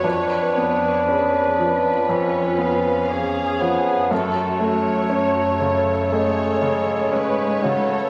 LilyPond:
<<
  \new Staff \with { instrumentName = "Violin section" } { \time 4/4 \key cis \phrygian \tempo 4 = 59 b'4 b'4 cis''8 eis''4. | cis''4 cis''4 cis''4 b'4 | }
  \new Staff \with { instrumentName = "Violin section" } { \time 4/4 \key cis \phrygian cis''4 b'2 gis'4 | a'8 cis''4. cis''4 cis''4 | }
  \new Staff \with { instrumentName = "Viola section" } { \time 4/4 \key cis \phrygian b'4 gis'8 eis'8 eis'4 gis'4 | fis'4 fis'8 a'4. b'8 a'8 | }
  \new Staff \with { instrumentName = "Bassoon" } { \time 4/4 \key cis \phrygian d'2 cis'4. b8 | a2 gis4. fis8 | }
  \new Staff \with { instrumentName = "Grand piano" } { \clef bass \time 4/4 \key cis \phrygian eis,8 b8 cis'8 eis8 eis,8 b8 cis'8 eis8 | fis,8 a8 cis'8 cis8 a8 cis8 cis'8 cis8 | }
  \new Staff \with { instrumentName = "Cello section" } { \clef bass \time 4/4 \key cis \phrygian eis,1 | fis,2. gis,4 | }
>>